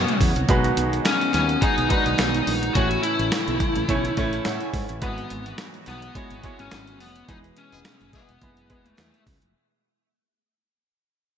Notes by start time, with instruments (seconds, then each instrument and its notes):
Already playing: analog synth pad B2 C#3 F#3 C#4 F#4, lead electric guitar B3, grand piano B3 C#4 F#4 C#5
0.08 closed hi-hat
0.21 fretless electric bass E2, kick, open hi-hat
0.36 fretless electric bass C2, closed hi-hat
0.48 fretless electric bass B1, grand piano B2 G#3 D#4 F#4 B4, analog synth pad D#3 G#3 B3, kick, closed hi-hat
0.64 closed hi-hat
0.77 fretless electric bass B1, closed hi-hat
0.93 closed hi-hat
1.05 lead electric guitar C#4, snare, clap, closed hi-hat, tambourine
1.21 closed hi-hat
1.34 fretless electric bass D#2, lead electric guitar C#4, clap, closed hi-hat
1.49 closed hi-hat
1.61 grand piano G#3 D#4 F#4 G#4, lead electric guitar D#4, kick, closed hi-hat
1.78 fretless electric bass B1, closed hi-hat
1.90 grand piano G#3 D4 F#4 B4, lead electric guitar D#4, kick, closed hi-hat
1.98 grand piano D#4
2.06 fretless electric bass B1, closed hi-hat
2.19 fretless electric bass B1, snare, clap, closed hi-hat, tambourine
2.35 closed hi-hat
2.47 fretless electric bass A#1, open hi-hat
2.63 closed hi-hat
2.74 fretless electric bass A1, grand piano A2 A3 C#4 E4 C#5, analog synth pad C#3 E3 A3 E4 A4, lead electric guitar F#4, kick, closed hi-hat
2.91 closed hi-hat
3.03 lead electric guitar E4, closed hi-hat
3.19 fretless electric bass A1, closed hi-hat
3.32 snare, clap, closed hi-hat, tambourine
3.48 fretless electric bass B1, closed hi-hat
3.60 kick, closed hi-hat
3.76 fretless electric bass A1, closed hi-hat
3.89 fretless electric bass B1, grand piano A3 C#4 E4 C#5, kick, closed hi-hat
4.05 closed hi-hat
4.17 fretless electric bass A1, grand piano A3 C#4 E4 C#5 E5, kick, closed hi-hat
4.33 closed hi-hat
4.45 fretless electric bass A2, grand piano F#5, snare, clap, closed hi-hat, tambourine
4.61 grand piano G#5, closed hi-hat
4.74 fretless electric bass G#2, kick, open hi-hat
4.89 fretless electric bass A1, closed hi-hat
5.02 fretless electric bass G#1, grand piano G#2 G#3 E4 F#4 B4, analog synth pad F#3 G#3 B3 F#4, lead electric guitar B3, kick, closed hi-hat
5.18 closed hi-hat
5.30 fretless electric bass G#1, closed hi-hat
5.46 closed hi-hat
5.58 snare, clap, closed hi-hat, tambourine
5.74 closed hi-hat
5.86 fretless electric bass B1, lead electric guitar B3, clap, closed hi-hat
6.02 closed hi-hat
6.15 grand piano G#3 E4 F#4 C#5, kick, closed hi-hat
6.30 fretless electric bass G#1, closed hi-hat
6.43 grand piano G#3 E4 F#4 C#5, kick, closed hi-hat
6.59 fretless electric bass G#1, lead electric guitar C#4, closed hi-hat
6.71 fretless electric bass G#1, snare, clap, closed hi-hat, tambourine
6.87 closed hi-hat
7.00 fretless electric bass F1, lead electric guitar B3, open hi-hat
7.16 closed hi-hat
7.28 fretless electric bass E1, analog synth pad B2 E4 G#4, grand piano E3 G#3 B3 E4 B4, horn section E3 G#3 B3 G#4, lead electric guitar D#4, kick, closed hi-hat
7.44 closed hi-hat
7.57 lead electric guitar C#4, closed hi-hat
7.72 fretless electric bass E1, horn section E3 G#3 B3 G#4, closed hi-hat
7.85 snare, clap, closed hi-hat, tambourine
8.01 fretless electric bass F#1, closed hi-hat
8.13 horn section E3 G#3 B3 G#4, lead electric guitar B3, kick, closed hi-hat
8.29 fretless electric bass E1, closed hi-hat
8.42 fretless electric bass F#1, grand piano G#3 B3 E4 B4, kick, closed hi-hat
8.57 closed hi-hat
8.70 fretless electric bass E1, grand piano G#3 B3 E4 B4, kick, closed hi-hat
8.86 closed hi-hat
8.90 lead electric guitar A3
8.98 fretless electric bass E2, snare, clap, closed hi-hat, tambourine
9.14 closed hi-hat
9.27 fretless electric bass C#2, kick, open hi-hat
9.42 fretless electric bass F1, closed hi-hat